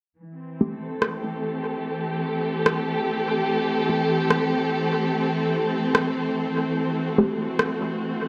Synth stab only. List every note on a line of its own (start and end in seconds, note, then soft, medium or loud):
0.61 0.78 A3 medium
0.61 0.78 C4 medium
0.61 0.78 G4 medium
3.89 4.07 A3 medium
3.89 4.07 C4 medium
3.89 4.07 G4 medium
7.18 7.36 A3 medium
7.18 7.36 C4 medium
7.18 7.36 G4 medium